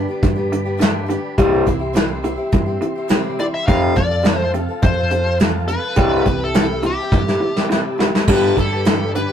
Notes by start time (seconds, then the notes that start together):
Already playing: G2 D3 G4 B4 D5 B5
0.08 G3 B3 D4 G4
0.23 G2 D3, kick, closed hi-hat
0.35 G3 B3 D4 G4
0.52 G2 D3, closed hi-hat
0.65 G3 B3 D4 G4
0.77 G2 D3 G3 B3 D4 G4, closed hi-hat
0.82 snare
1.06 G2 D3 G3 B3 D4 G4, closed hi-hat
1.37 C2 C3 E3 G3 C4 E4 G4 E5 C6, kick, closed hi-hat
1.52 C4 E4 G4
1.66 C2 C3 E3 G3 C4 E4 G4, kick, closed hi-hat
1.79 C4 E4 G4
1.93 C3 E3 G3 C4 E4 G4, snare, closed hi-hat
2.23 C3 E3 G3 C4 E4 G4, closed hi-hat
2.36 C4 E4 G4
2.52 G2 C3 E3, kick, closed hi-hat
2.66 C4 E4 G4
2.81 C3 E3, closed hi-hat
2.95 C4 E4 G4
3.08 C3 E3 G3 C4 E4 G4, snare, closed hi-hat
3.39 C3 E3 G3 C4 E4 G4 D5, closed hi-hat
3.54 E5
3.67 F2 C3 F3 C4 F4 A4 F5 A5, kick, closed hi-hat
3.96 F2 C3 F3 C4 F4 A4 D5, kick, closed hi-hat
4.09 C4 F4 A4
4.22 F2 C3 F3 C4 F4 A4, snare, closed hi-hat
4.38 C5
4.54 F2 C3 F3 C4 F4 A4, closed hi-hat
4.68 C4 F4 A4
4.82 F2 C3 C5, kick, closed hi-hat
4.97 C4 F4 A4
5.11 F2 C3, closed hi-hat
5.26 C4 F4 A4
5.39 F2 C3 F3 C4 F4 A4, snare, closed hi-hat
5.68 F2 C3 F3 C4 F4 B4, closed hi-hat
5.72 A4
5.96 C2 C3 E3 G3 C4 E4 G4 E5, kick, closed hi-hat
6.00 G4
6.13 C4 E4 G4
6.26 C2 C3 E3 G3 C4, kick, closed hi-hat
6.30 E4 G4
6.43 C4 E4 G4 A4
6.54 C3 E3, snare, closed hi-hat
6.58 C3 G3 C4 E4 G4
6.83 C3 E3 G3 G4, closed hi-hat
6.87 C4 E4 G4
7.01 C4 E4 G4
7.12 G2 C3 E3, kick, snare
7.28 C4 E4 G4, snare
7.40 C3 E3
7.56 C4 E4 G4, snare
7.69 C3 E3 G3 C4 E4 G4, snare
7.98 C3 E3 G3 C4 E4 G4, snare
8.15 snare
8.28 G2 D3 G3 B3 D4 G4 B4 D5 B5, kick, crash
8.33 B4
8.44 G3 B3 D4 G4
8.57 G2 D3 G3 B3 D4 G4 A4, kick, closed hi-hat
8.73 G3 B3 D4 G4
8.85 G2 D3 G3 B3 D4, snare, closed hi-hat
8.89 G4
9.15 G2 D3 G3 B3 D4 G4 B4, closed hi-hat
9.28 D4 G4